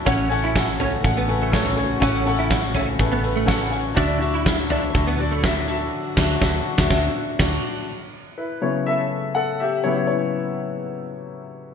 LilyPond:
<<
  \new Staff \with { instrumentName = "Grand piano" } { \time 4/4 \key a \mixolydian \tempo 4 = 123 <cis' a' fis''>8 <cis' a' fis''>8 <cis' a' fis''>8 <cis' a' cis''>8 <cis' a' fis''>8 <cis' a' b'>8 <cis' a' cis''>8 <cis' a' cis''>8 | <cis' a' fis''>8 <cis' a' fis''>8 <cis' a' fis''>8 <cis' a' e''>8 <cis' a' b'>8 <cis' a' b'>8 <cis' a' fis''>8 <cis' a' fis''>8 | <d' fis' e''>8 <d' fis' e''>8 <d' fis' e''>8 <d' fis' e''>8 <d' fis' e''>8 <d' fis' d''>8 <d' fis' e''>8 <d' fis' e''>8 | r8 <d' fis' e''>8 <d' fis' e''>8 r16 <d' fis' e''>16 <d' fis' e''>8 r8 <d' fis'>8 r8 |
r4 <e' b'>8 <e' cis''>8 <a' e''>4 <a' fis''>8 <g' e''>8 | <e' cis''>8 <e' cis''>4. r2 | }
  \new Staff \with { instrumentName = "Grand piano" } { \clef bass \time 4/4 \key a \mixolydian a,4. r2 r8 | a,4. r2 r8 | d4. r2 r8 | r1 |
r4. <cis fis b>2~ <cis fis b>8 | <cis fis b>4. r2 r8 | }
  \new Staff \with { instrumentName = "Clean electric guitar" } { \time 4/4 \key a \mixolydian cis'8 r16 e'8 r16 cis'16 r8 b16 r16 a8 r8. | cis'8 r16 e'8 r16 cis'16 r8 b16 r16 a8 r8. | d'8 r16 e'8 r16 d'16 r8 b16 r16 a8 r8. | r1 |
r1 | r1 | }
  \new Staff \with { instrumentName = "String section" } { \time 4/4 \key a \mixolydian << { fis'1~ | fis'1 | e'1 | fis'1 |
r1 | r1 | } \\ { <cis a>1~ | <cis a>1 | <d fis>1~ | <d fis>1 |
r1 | r1 | } >> }
  \new Staff \with { instrumentName = "Fingered electric bass" } { \clef bass \time 4/4 \key a \mixolydian a,,2 a,,2 | a,,2 a,,2 | d,2 d,2 | r8 d,8 d,8 r16 d,16 d,8 r8 d,8 r8 |
r1 | r1 | }
  \new DrumStaff \with { instrumentName = "Drums" } \drummode { \time 4/4 <hh bd>8 hh8 <hh bd sn>16 hh16 <hh tomfh>8 <hh bd>8 hh8 <hh bd sn>16 tomfh16 hh8 | <hh bd>8 hh8 <hh bd sn>8 <hh tomfh>8 <hh bd>8 hh8 <hh bd sn>16 hh16 hh8 | <hh bd>8 hh8 <hh bd sn>8 <hh tomfh>8 <hh bd>8 hh8 <hh bd sn>8 hh8 | r8 <cymc bd sn>8 <bd sn>8. <bd sn>16 <bd sn>4 <cymc bd sn>4 |
r4 r4 r4 r4 | r4 r4 r4 r4 | }
>>